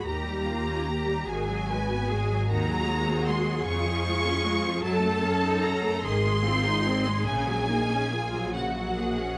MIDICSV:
0, 0, Header, 1, 6, 480
1, 0, Start_track
1, 0, Tempo, 816327
1, 43, Time_signature, 6, 3, 24, 8
1, 1003, Tempo, 791557
1, 3883, Tempo, 833333
1, 4843, Tempo, 865801
1, 5540, End_track
2, 0, Start_track
2, 0, Title_t, "Violin section"
2, 0, Program_c, 0, 48
2, 35, Note_on_c, 0, 82, 106
2, 742, Note_off_c, 0, 82, 0
2, 748, Note_on_c, 0, 80, 112
2, 1480, Note_off_c, 0, 80, 0
2, 1482, Note_on_c, 0, 82, 117
2, 1958, Note_off_c, 0, 82, 0
2, 1962, Note_on_c, 0, 84, 99
2, 2195, Note_on_c, 0, 85, 127
2, 2198, Note_off_c, 0, 84, 0
2, 2893, Note_off_c, 0, 85, 0
2, 2904, Note_on_c, 0, 81, 127
2, 3382, Note_off_c, 0, 81, 0
2, 3397, Note_on_c, 0, 82, 115
2, 3632, Note_on_c, 0, 84, 127
2, 3640, Note_off_c, 0, 82, 0
2, 4338, Note_off_c, 0, 84, 0
2, 4350, Note_on_c, 0, 80, 127
2, 5062, Note_off_c, 0, 80, 0
2, 5082, Note_on_c, 0, 78, 102
2, 5540, Note_off_c, 0, 78, 0
2, 5540, End_track
3, 0, Start_track
3, 0, Title_t, "Violin section"
3, 0, Program_c, 1, 48
3, 32, Note_on_c, 1, 82, 89
3, 751, Note_on_c, 1, 80, 90
3, 755, Note_off_c, 1, 82, 0
3, 1480, Note_on_c, 1, 82, 112
3, 1482, Note_off_c, 1, 80, 0
3, 1948, Note_off_c, 1, 82, 0
3, 1955, Note_on_c, 1, 84, 88
3, 2183, Note_on_c, 1, 85, 106
3, 2195, Note_off_c, 1, 84, 0
3, 2898, Note_on_c, 1, 81, 105
3, 2902, Note_off_c, 1, 85, 0
3, 3379, Note_off_c, 1, 81, 0
3, 3384, Note_on_c, 1, 82, 99
3, 3621, Note_on_c, 1, 84, 114
3, 3634, Note_off_c, 1, 82, 0
3, 4345, Note_on_c, 1, 80, 114
3, 4348, Note_off_c, 1, 84, 0
3, 5074, Note_off_c, 1, 80, 0
3, 5077, Note_on_c, 1, 78, 80
3, 5540, Note_off_c, 1, 78, 0
3, 5540, End_track
4, 0, Start_track
4, 0, Title_t, "Cello section"
4, 0, Program_c, 2, 48
4, 48, Note_on_c, 2, 67, 83
4, 276, Note_off_c, 2, 67, 0
4, 282, Note_on_c, 2, 65, 74
4, 517, Note_on_c, 2, 67, 82
4, 518, Note_off_c, 2, 65, 0
4, 756, Note_on_c, 2, 68, 83
4, 761, Note_off_c, 2, 67, 0
4, 1001, Note_on_c, 2, 71, 85
4, 1002, Note_off_c, 2, 68, 0
4, 1243, Note_on_c, 2, 68, 89
4, 1247, Note_off_c, 2, 71, 0
4, 1483, Note_off_c, 2, 68, 0
4, 1487, Note_on_c, 2, 66, 96
4, 2183, Note_off_c, 2, 66, 0
4, 2191, Note_on_c, 2, 65, 91
4, 2906, Note_off_c, 2, 65, 0
4, 2906, Note_on_c, 2, 69, 110
4, 3623, Note_off_c, 2, 69, 0
4, 3640, Note_on_c, 2, 68, 97
4, 3879, Note_on_c, 2, 65, 88
4, 3883, Note_off_c, 2, 68, 0
4, 4112, Note_on_c, 2, 63, 82
4, 4116, Note_off_c, 2, 65, 0
4, 4353, Note_off_c, 2, 63, 0
4, 4358, Note_on_c, 2, 61, 94
4, 4595, Note_on_c, 2, 63, 82
4, 4599, Note_off_c, 2, 61, 0
4, 4841, Note_off_c, 2, 63, 0
4, 4842, Note_on_c, 2, 65, 85
4, 5078, Note_off_c, 2, 65, 0
4, 5080, Note_on_c, 2, 66, 80
4, 5314, Note_off_c, 2, 66, 0
4, 5321, Note_on_c, 2, 68, 72
4, 5540, Note_off_c, 2, 68, 0
4, 5540, End_track
5, 0, Start_track
5, 0, Title_t, "Viola section"
5, 0, Program_c, 3, 48
5, 38, Note_on_c, 3, 67, 73
5, 40, Note_on_c, 3, 51, 65
5, 151, Note_off_c, 3, 51, 0
5, 154, Note_on_c, 3, 55, 66
5, 275, Note_off_c, 3, 55, 0
5, 276, Note_on_c, 3, 58, 61
5, 393, Note_on_c, 3, 61, 66
5, 395, Note_off_c, 3, 58, 0
5, 514, Note_off_c, 3, 61, 0
5, 517, Note_on_c, 3, 58, 72
5, 632, Note_on_c, 3, 55, 65
5, 638, Note_off_c, 3, 58, 0
5, 755, Note_on_c, 3, 51, 74
5, 756, Note_on_c, 3, 66, 74
5, 757, Note_off_c, 3, 55, 0
5, 758, Note_off_c, 3, 67, 0
5, 871, Note_off_c, 3, 51, 0
5, 878, Note_on_c, 3, 54, 73
5, 1001, Note_off_c, 3, 54, 0
5, 1003, Note_on_c, 3, 56, 71
5, 1127, Note_off_c, 3, 56, 0
5, 1129, Note_on_c, 3, 59, 71
5, 1246, Note_on_c, 3, 56, 78
5, 1249, Note_off_c, 3, 59, 0
5, 1360, Note_on_c, 3, 54, 74
5, 1367, Note_off_c, 3, 56, 0
5, 1470, Note_off_c, 3, 66, 0
5, 1483, Note_off_c, 3, 54, 0
5, 1486, Note_on_c, 3, 51, 82
5, 1486, Note_on_c, 3, 68, 87
5, 1596, Note_off_c, 3, 51, 0
5, 1600, Note_on_c, 3, 54, 79
5, 1721, Note_off_c, 3, 54, 0
5, 1721, Note_on_c, 3, 56, 72
5, 1841, Note_off_c, 3, 56, 0
5, 1841, Note_on_c, 3, 60, 77
5, 1960, Note_off_c, 3, 60, 0
5, 1961, Note_on_c, 3, 56, 74
5, 2079, Note_off_c, 3, 56, 0
5, 2085, Note_on_c, 3, 54, 71
5, 2196, Note_on_c, 3, 49, 79
5, 2200, Note_off_c, 3, 54, 0
5, 2306, Note_off_c, 3, 49, 0
5, 2317, Note_on_c, 3, 53, 81
5, 2434, Note_off_c, 3, 53, 0
5, 2436, Note_on_c, 3, 56, 79
5, 2553, Note_off_c, 3, 56, 0
5, 2556, Note_on_c, 3, 61, 85
5, 2670, Note_on_c, 3, 56, 84
5, 2672, Note_off_c, 3, 61, 0
5, 2786, Note_on_c, 3, 53, 80
5, 2789, Note_off_c, 3, 56, 0
5, 2884, Note_off_c, 3, 68, 0
5, 2900, Note_on_c, 3, 54, 93
5, 2900, Note_on_c, 3, 69, 91
5, 2907, Note_off_c, 3, 53, 0
5, 3015, Note_on_c, 3, 57, 83
5, 3016, Note_off_c, 3, 54, 0
5, 3137, Note_on_c, 3, 61, 77
5, 3143, Note_off_c, 3, 57, 0
5, 3264, Note_on_c, 3, 63, 83
5, 3265, Note_off_c, 3, 61, 0
5, 3382, Note_on_c, 3, 61, 79
5, 3391, Note_off_c, 3, 63, 0
5, 3507, Note_on_c, 3, 57, 81
5, 3511, Note_off_c, 3, 61, 0
5, 3631, Note_on_c, 3, 68, 90
5, 3633, Note_on_c, 3, 51, 82
5, 3634, Note_off_c, 3, 57, 0
5, 3634, Note_off_c, 3, 69, 0
5, 3749, Note_off_c, 3, 51, 0
5, 3754, Note_on_c, 3, 56, 81
5, 3875, Note_on_c, 3, 60, 90
5, 3880, Note_off_c, 3, 56, 0
5, 3996, Note_off_c, 3, 60, 0
5, 3998, Note_on_c, 3, 63, 80
5, 4116, Note_off_c, 3, 63, 0
5, 4121, Note_on_c, 3, 60, 88
5, 4237, Note_on_c, 3, 56, 81
5, 4238, Note_off_c, 3, 60, 0
5, 4356, Note_off_c, 3, 56, 0
5, 4359, Note_on_c, 3, 49, 94
5, 4469, Note_off_c, 3, 49, 0
5, 4478, Note_on_c, 3, 54, 83
5, 4599, Note_off_c, 3, 54, 0
5, 4604, Note_on_c, 3, 58, 73
5, 4723, Note_off_c, 3, 58, 0
5, 4726, Note_on_c, 3, 61, 76
5, 4846, Note_off_c, 3, 61, 0
5, 4846, Note_on_c, 3, 58, 71
5, 4962, Note_off_c, 3, 58, 0
5, 4962, Note_on_c, 3, 54, 72
5, 5053, Note_off_c, 3, 68, 0
5, 5079, Note_off_c, 3, 54, 0
5, 5079, Note_on_c, 3, 66, 79
5, 5081, Note_on_c, 3, 49, 69
5, 5198, Note_on_c, 3, 54, 65
5, 5199, Note_off_c, 3, 49, 0
5, 5319, Note_off_c, 3, 54, 0
5, 5320, Note_on_c, 3, 58, 69
5, 5437, Note_on_c, 3, 61, 66
5, 5441, Note_off_c, 3, 58, 0
5, 5540, Note_off_c, 3, 61, 0
5, 5540, Note_off_c, 3, 66, 0
5, 5540, End_track
6, 0, Start_track
6, 0, Title_t, "Double bass section"
6, 0, Program_c, 4, 48
6, 41, Note_on_c, 4, 39, 70
6, 744, Note_off_c, 4, 39, 0
6, 757, Note_on_c, 4, 32, 81
6, 1470, Note_off_c, 4, 32, 0
6, 1482, Note_on_c, 4, 39, 89
6, 2191, Note_on_c, 4, 41, 89
6, 2195, Note_off_c, 4, 39, 0
6, 2891, Note_off_c, 4, 41, 0
6, 2907, Note_on_c, 4, 42, 89
6, 3623, Note_off_c, 4, 42, 0
6, 3636, Note_on_c, 4, 32, 97
6, 4340, Note_off_c, 4, 32, 0
6, 4354, Note_on_c, 4, 34, 90
6, 5540, Note_off_c, 4, 34, 0
6, 5540, End_track
0, 0, End_of_file